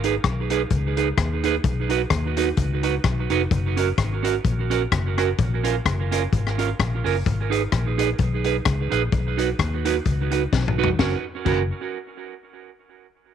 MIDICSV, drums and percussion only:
0, 0, Header, 1, 2, 480
1, 0, Start_track
1, 0, Key_signature, 6, "major"
1, 0, Tempo, 466926
1, 1690, Time_signature, 4, 2, 24, 8
1, 13718, End_track
2, 0, Start_track
2, 0, Title_t, "Drums"
2, 39, Note_on_c, 9, 42, 93
2, 142, Note_off_c, 9, 42, 0
2, 247, Note_on_c, 9, 37, 98
2, 248, Note_on_c, 9, 36, 91
2, 249, Note_on_c, 9, 42, 76
2, 350, Note_off_c, 9, 37, 0
2, 351, Note_off_c, 9, 36, 0
2, 351, Note_off_c, 9, 42, 0
2, 516, Note_on_c, 9, 42, 104
2, 619, Note_off_c, 9, 42, 0
2, 725, Note_on_c, 9, 42, 70
2, 728, Note_on_c, 9, 36, 102
2, 828, Note_off_c, 9, 42, 0
2, 831, Note_off_c, 9, 36, 0
2, 998, Note_on_c, 9, 42, 81
2, 1101, Note_off_c, 9, 42, 0
2, 1209, Note_on_c, 9, 36, 110
2, 1210, Note_on_c, 9, 37, 114
2, 1213, Note_on_c, 9, 42, 69
2, 1312, Note_off_c, 9, 36, 0
2, 1313, Note_off_c, 9, 37, 0
2, 1316, Note_off_c, 9, 42, 0
2, 1478, Note_on_c, 9, 42, 82
2, 1581, Note_off_c, 9, 42, 0
2, 1686, Note_on_c, 9, 42, 67
2, 1687, Note_on_c, 9, 36, 124
2, 1789, Note_off_c, 9, 42, 0
2, 1790, Note_off_c, 9, 36, 0
2, 1951, Note_on_c, 9, 42, 86
2, 2054, Note_off_c, 9, 42, 0
2, 2162, Note_on_c, 9, 37, 105
2, 2163, Note_on_c, 9, 42, 74
2, 2165, Note_on_c, 9, 36, 100
2, 2264, Note_off_c, 9, 37, 0
2, 2266, Note_off_c, 9, 42, 0
2, 2268, Note_off_c, 9, 36, 0
2, 2435, Note_on_c, 9, 42, 113
2, 2537, Note_off_c, 9, 42, 0
2, 2642, Note_on_c, 9, 42, 78
2, 2647, Note_on_c, 9, 36, 102
2, 2745, Note_off_c, 9, 42, 0
2, 2749, Note_off_c, 9, 36, 0
2, 2912, Note_on_c, 9, 42, 84
2, 3015, Note_off_c, 9, 42, 0
2, 3125, Note_on_c, 9, 37, 115
2, 3128, Note_on_c, 9, 36, 124
2, 3128, Note_on_c, 9, 42, 70
2, 3228, Note_off_c, 9, 37, 0
2, 3230, Note_off_c, 9, 36, 0
2, 3231, Note_off_c, 9, 42, 0
2, 3393, Note_on_c, 9, 42, 80
2, 3495, Note_off_c, 9, 42, 0
2, 3609, Note_on_c, 9, 36, 124
2, 3610, Note_on_c, 9, 42, 66
2, 3712, Note_off_c, 9, 36, 0
2, 3713, Note_off_c, 9, 42, 0
2, 3879, Note_on_c, 9, 42, 96
2, 3982, Note_off_c, 9, 42, 0
2, 4090, Note_on_c, 9, 36, 100
2, 4092, Note_on_c, 9, 37, 99
2, 4094, Note_on_c, 9, 42, 73
2, 4193, Note_off_c, 9, 36, 0
2, 4195, Note_off_c, 9, 37, 0
2, 4197, Note_off_c, 9, 42, 0
2, 4366, Note_on_c, 9, 42, 100
2, 4469, Note_off_c, 9, 42, 0
2, 4571, Note_on_c, 9, 36, 97
2, 4571, Note_on_c, 9, 42, 73
2, 4674, Note_off_c, 9, 36, 0
2, 4674, Note_off_c, 9, 42, 0
2, 4843, Note_on_c, 9, 42, 83
2, 4946, Note_off_c, 9, 42, 0
2, 5057, Note_on_c, 9, 36, 115
2, 5059, Note_on_c, 9, 37, 116
2, 5061, Note_on_c, 9, 42, 66
2, 5160, Note_off_c, 9, 36, 0
2, 5161, Note_off_c, 9, 37, 0
2, 5164, Note_off_c, 9, 42, 0
2, 5325, Note_on_c, 9, 37, 68
2, 5326, Note_on_c, 9, 42, 76
2, 5427, Note_off_c, 9, 37, 0
2, 5429, Note_off_c, 9, 42, 0
2, 5536, Note_on_c, 9, 42, 59
2, 5538, Note_on_c, 9, 36, 114
2, 5639, Note_off_c, 9, 42, 0
2, 5641, Note_off_c, 9, 36, 0
2, 5804, Note_on_c, 9, 42, 98
2, 5907, Note_off_c, 9, 42, 0
2, 6020, Note_on_c, 9, 36, 101
2, 6023, Note_on_c, 9, 37, 106
2, 6025, Note_on_c, 9, 42, 75
2, 6123, Note_off_c, 9, 36, 0
2, 6126, Note_off_c, 9, 37, 0
2, 6128, Note_off_c, 9, 42, 0
2, 6294, Note_on_c, 9, 42, 107
2, 6396, Note_off_c, 9, 42, 0
2, 6504, Note_on_c, 9, 36, 100
2, 6504, Note_on_c, 9, 42, 74
2, 6607, Note_off_c, 9, 36, 0
2, 6607, Note_off_c, 9, 42, 0
2, 6649, Note_on_c, 9, 37, 78
2, 6752, Note_off_c, 9, 37, 0
2, 6774, Note_on_c, 9, 42, 87
2, 6877, Note_off_c, 9, 42, 0
2, 6986, Note_on_c, 9, 36, 120
2, 6989, Note_on_c, 9, 37, 117
2, 6992, Note_on_c, 9, 42, 66
2, 7089, Note_off_c, 9, 36, 0
2, 7092, Note_off_c, 9, 37, 0
2, 7095, Note_off_c, 9, 42, 0
2, 7260, Note_on_c, 9, 46, 49
2, 7363, Note_off_c, 9, 46, 0
2, 7465, Note_on_c, 9, 36, 127
2, 7467, Note_on_c, 9, 42, 67
2, 7568, Note_off_c, 9, 36, 0
2, 7569, Note_off_c, 9, 42, 0
2, 7735, Note_on_c, 9, 42, 88
2, 7837, Note_off_c, 9, 42, 0
2, 7939, Note_on_c, 9, 37, 94
2, 7940, Note_on_c, 9, 42, 71
2, 7941, Note_on_c, 9, 36, 100
2, 8041, Note_off_c, 9, 37, 0
2, 8043, Note_off_c, 9, 42, 0
2, 8044, Note_off_c, 9, 36, 0
2, 8215, Note_on_c, 9, 42, 108
2, 8318, Note_off_c, 9, 42, 0
2, 8415, Note_on_c, 9, 42, 72
2, 8421, Note_on_c, 9, 36, 91
2, 8518, Note_off_c, 9, 42, 0
2, 8524, Note_off_c, 9, 36, 0
2, 8682, Note_on_c, 9, 42, 83
2, 8784, Note_off_c, 9, 42, 0
2, 8896, Note_on_c, 9, 37, 118
2, 8899, Note_on_c, 9, 42, 66
2, 8901, Note_on_c, 9, 36, 119
2, 8999, Note_off_c, 9, 37, 0
2, 9002, Note_off_c, 9, 42, 0
2, 9003, Note_off_c, 9, 36, 0
2, 9167, Note_on_c, 9, 42, 73
2, 9270, Note_off_c, 9, 42, 0
2, 9379, Note_on_c, 9, 42, 62
2, 9380, Note_on_c, 9, 36, 115
2, 9481, Note_off_c, 9, 42, 0
2, 9483, Note_off_c, 9, 36, 0
2, 9650, Note_on_c, 9, 42, 98
2, 9753, Note_off_c, 9, 42, 0
2, 9860, Note_on_c, 9, 36, 100
2, 9864, Note_on_c, 9, 37, 112
2, 9865, Note_on_c, 9, 42, 72
2, 9963, Note_off_c, 9, 36, 0
2, 9967, Note_off_c, 9, 37, 0
2, 9968, Note_off_c, 9, 42, 0
2, 10131, Note_on_c, 9, 42, 105
2, 10233, Note_off_c, 9, 42, 0
2, 10337, Note_on_c, 9, 42, 73
2, 10339, Note_on_c, 9, 36, 93
2, 10439, Note_off_c, 9, 42, 0
2, 10442, Note_off_c, 9, 36, 0
2, 10605, Note_on_c, 9, 42, 86
2, 10708, Note_off_c, 9, 42, 0
2, 10821, Note_on_c, 9, 36, 119
2, 10823, Note_on_c, 9, 38, 58
2, 10924, Note_off_c, 9, 36, 0
2, 10926, Note_off_c, 9, 38, 0
2, 10979, Note_on_c, 9, 45, 72
2, 11082, Note_off_c, 9, 45, 0
2, 11139, Note_on_c, 9, 43, 106
2, 11241, Note_off_c, 9, 43, 0
2, 11299, Note_on_c, 9, 38, 88
2, 11300, Note_on_c, 9, 36, 102
2, 11402, Note_off_c, 9, 38, 0
2, 11403, Note_off_c, 9, 36, 0
2, 11780, Note_on_c, 9, 36, 91
2, 11780, Note_on_c, 9, 49, 76
2, 11883, Note_off_c, 9, 36, 0
2, 11883, Note_off_c, 9, 49, 0
2, 13718, End_track
0, 0, End_of_file